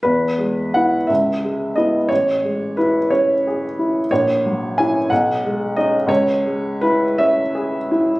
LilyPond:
\new Staff \with { instrumentName = "Grand piano" } { \time 6/8 \key e \major \tempo 4. = 59 << { b'4 fis''8 e''4 dis''8 | cis''4 b'8 cis''4. | cis''4 gis''8 fis''4 dis''8 | cis''4 b'8 e''4. | } \\ { e,8 gis8 <b e'>8 cis,8 gis8 <b e'>8 | a,,8 gis8 e'8 cis'8 gis'8 e'8 | ais,,8 fis8 <cis' e'>8 b,,8 gis8 <cis' dis'>8 | cis,8 gis8 e'8 cis'8 gis'8 e'8 | } >> }